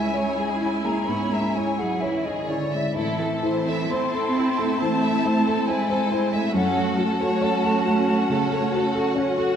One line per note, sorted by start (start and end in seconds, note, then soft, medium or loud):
0.00 1.04 C#2 soft
0.00 0.81 G#3 soft
0.00 0.85 G#3 soft
0.00 2.71 C#4 soft
0.00 0.61 E4 soft
0.00 2.75 E4 soft
0.00 0.28 G#4 soft
0.00 0.14 E5 soft
0.00 0.87 G#5 medium
0.00 2.74 G#5 soft
0.14 0.51 C#5 soft
0.14 0.38 C#5 soft
0.37 0.61 G#4 soft
0.37 0.75 G#4 soft
0.61 0.85 E4 soft
0.61 0.99 E4 soft
0.84 1.23 G#3 soft
0.84 1.08 A#3 soft
0.84 1.08 G#4 soft
0.84 1.09 A#5 medium
1.07 1.46 G#2 soft
1.07 1.32 B3 soft
1.07 1.30 C#5 soft
1.07 1.34 B5 medium
1.31 1.69 G#3 soft
1.31 1.55 A#3 soft
1.31 1.56 E5 soft
1.31 1.57 A#5 soft
1.55 1.79 G#3 soft
1.55 1.93 E4 soft
1.55 1.79 C#5 soft
1.55 1.80 G#5 soft
1.79 2.02 F#3 soft
1.79 2.02 G#4 soft
1.79 2.16 G#4 soft
1.79 2.02 F#5 soft
2.01 2.25 E3 soft
2.01 2.25 E4 soft
2.01 2.40 C#5 soft
2.01 2.26 E5 soft
2.25 2.49 D#3 soft
2.25 2.48 G#4 soft
2.25 2.63 G#4 soft
2.25 2.49 D#5 soft
2.47 2.96 D3 soft
2.47 2.87 E4 soft
2.47 2.72 C#5 soft
2.47 2.96 D5 soft
2.72 2.96 G#3 soft
2.72 2.96 E5 soft
2.94 4.76 A2 soft
2.94 3.88 E3 soft
2.94 6.50 C4 soft
2.94 6.50 E4 soft
2.94 3.17 E4 soft
2.94 3.19 A4 soft
2.94 3.61 E5 soft
2.94 6.52 A5 soft
3.19 3.58 A3 soft
3.19 3.44 A4 soft
3.43 3.81 E4 soft
3.43 3.68 C5 soft
3.68 4.04 A4 soft
3.68 3.91 E5 soft
3.90 4.80 C4 medium
3.90 4.13 C5 soft
3.90 4.27 C5 soft
3.90 4.81 C6 medium
4.14 4.49 A4 soft
4.14 4.36 A4 soft
4.36 4.58 E4 soft
4.36 4.72 E4 soft
4.58 4.94 A3 soft
4.58 4.80 A4 soft
4.79 5.16 E3 soft
4.79 5.68 A3 medium
4.79 5.00 C5 soft
4.79 5.69 A5 medium
5.03 5.37 A3 soft
5.03 5.24 E5 soft
5.25 5.59 E4 soft
5.25 5.46 C5 soft
5.46 5.81 A4 soft
5.46 5.68 A4 soft
5.67 6.55 G#3 medium
5.67 5.89 E4 soft
5.67 5.88 C5 soft
5.67 6.54 G#5 medium
5.88 6.11 A4 soft
5.88 6.24 C5 soft
6.11 6.46 E4 soft
6.11 6.33 C5 soft
6.33 6.55 A3 soft
6.33 6.55 E5 soft
6.54 8.25 F#2 soft
6.54 6.98 F#3 medium
6.54 6.75 C#4 medium
6.54 9.56 C#4 medium
6.54 9.56 F#4 medium
6.54 6.97 A4 soft
6.54 9.56 F#5 soft
6.54 6.99 F#5 medium
6.76 7.11 A3 soft
6.76 6.98 F#4 soft
6.98 9.16 A3 medium
6.98 7.33 F#4 soft
6.98 7.20 A4 soft
6.98 9.16 A5 medium
7.20 7.55 A4 soft
7.20 7.42 C#5 soft
7.42 7.64 A4 medium
7.42 7.77 C#5 soft
7.63 7.85 F#4 soft
7.63 7.99 A4 soft
7.86 8.08 C#4 soft
7.86 8.21 F#4 soft
8.08 8.43 A3 soft
8.08 8.30 F#4 soft
8.30 8.65 C#3 soft
8.30 8.51 A4 soft
8.52 8.86 A3 soft
8.52 8.74 C#5 soft
8.74 9.08 F#4 soft
8.74 8.95 A4 soft
8.95 9.17 F#4 soft
8.95 9.29 A4 soft
9.16 9.38 C#4 soft
9.16 9.50 C#5 soft
9.38 9.56 F#4 medium
9.38 9.56 A4 soft